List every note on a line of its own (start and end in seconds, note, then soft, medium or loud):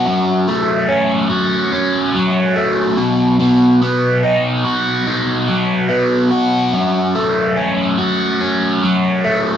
0.00 2.14 F#3 medium
0.00 1.29 F#4 medium
0.05 2.14 F#2 medium
0.48 2.55 A3 medium
0.88 1.71 C#4 medium
1.30 4.64 F#4 medium
1.72 2.97 C#4 medium
2.15 5.47 F#3 medium
2.56 2.97 A3 medium
2.97 3.38 B2 medium
3.39 5.47 B2 medium
3.82 5.88 B3 medium
4.23 5.06 D#4 medium
4.65 6.31 F#4 medium
5.07 6.73 D#4 medium
5.48 8.82 F#3 medium
5.89 6.72 B3 medium
6.31 7.97 F#4 medium
6.73 8.81 F#2 medium
7.15 9.23 A3 medium
7.56 8.40 C#4 medium
7.98 9.57 F#4 medium
8.41 9.57 C#4 medium
8.83 9.57 F#3 medium
9.24 9.57 A3 medium